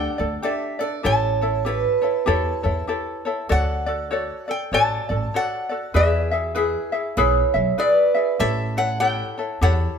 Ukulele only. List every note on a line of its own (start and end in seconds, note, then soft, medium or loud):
0.00 0.19 D4 medium
0.00 0.19 G4 medium
0.00 0.19 A4 loud
0.00 0.17 D5 medium
0.18 0.42 D4 soft
0.18 0.43 A4 soft
0.18 0.43 D5 medium
0.42 0.80 D4 medium
0.42 0.80 G4 medium
0.42 0.79 A4 medium
0.42 0.78 D5 medium
0.79 1.03 D4 soft
0.79 1.03 A4 medium
0.79 1.04 D5 medium
1.03 1.41 E4 medium
1.03 1.41 G4 medium
1.03 1.41 A4 medium
1.03 1.40 C#5 medium
1.41 1.65 E4 soft
1.41 1.65 A4 soft
1.41 1.66 C#5 soft
1.65 2.03 E4 medium
1.65 2.02 G4 medium
1.65 2.01 A4 medium
1.65 2.00 C#5 medium
2.02 2.26 E4 soft
2.02 2.26 A4 soft
2.02 2.26 C#5 medium
2.26 2.64 E4 medium
2.26 2.64 G4 medium
2.26 2.63 A4 loud
2.26 2.62 C#5 loud
2.63 2.87 E4 soft
2.63 2.88 A4 medium
2.63 2.88 C#5 medium
2.87 3.25 E4 medium
2.87 3.25 G4 medium
2.87 3.25 A4 medium
2.87 3.24 C#5 medium
3.25 3.49 E4 soft
3.25 3.49 A4 medium
3.25 3.48 C#5 medium
3.49 3.87 F#4 medium
3.49 3.86 A4 medium
3.49 3.86 C#5 medium
3.49 3.85 D5 medium
3.86 4.10 F#4 soft
3.86 4.11 A4 medium
3.86 4.11 D5 medium
4.11 4.48 F#4 medium
4.11 4.48 A4 medium
4.11 4.48 C#5 medium
4.11 4.46 D5 medium
4.48 4.72 A4 soft
4.48 4.72 D5 soft
4.73 5.10 F#4 medium
4.73 5.09 A4 medium
4.73 5.09 C#5 medium
4.73 5.08 D5 medium
5.09 5.34 F#4 soft
5.09 5.34 A4 soft
5.09 5.33 D5 medium
5.34 5.70 F#4 medium
5.34 5.70 A4 medium
5.34 5.71 C#5 medium
5.34 5.68 D5 medium
5.69 5.94 F#4 soft
5.69 5.94 A4 soft
5.69 5.94 D5 soft
5.94 6.32 E4 medium
5.94 6.31 G#4 medium
5.94 6.31 B4 medium
5.94 6.30 E5 medium
6.31 6.54 E4 soft
6.31 6.55 G#4 soft
6.31 6.56 E5 medium
6.55 6.93 E4 medium
6.55 6.91 G#4 medium
6.55 6.92 B4 medium
6.55 6.91 E5 medium
6.92 7.16 E4 soft
6.92 7.17 G#4 medium
6.92 7.17 E5 medium
7.17 7.54 E4 medium
7.17 7.54 G#4 loud
7.17 7.54 B4 loud
7.17 7.53 E5 medium
7.54 7.77 E4 soft
7.54 7.78 G#4 medium
7.54 7.78 E5 medium
7.78 8.15 E4 medium
7.78 8.14 G#4 medium
7.78 8.15 B4 medium
7.78 8.13 E5 medium
8.14 8.39 E4 soft
8.14 8.39 G#4 soft
8.14 8.39 E5 medium
8.39 8.77 E4 medium
8.39 8.76 G4 medium
8.39 8.76 A4 medium
8.39 8.76 C#5 medium
8.77 9.00 E4 soft
8.77 9.00 A4 soft
8.77 9.00 C#5 medium
9.00 9.38 E4 medium
9.00 9.37 G4 medium
9.00 9.37 A4 medium
9.00 9.36 C#5 medium
9.38 9.61 E4 soft
9.38 9.62 A4 soft
9.38 9.62 C#5 soft
9.62 9.98 E4 medium
9.62 9.98 G4 medium
9.62 9.98 A4 medium
9.62 9.97 C#5 medium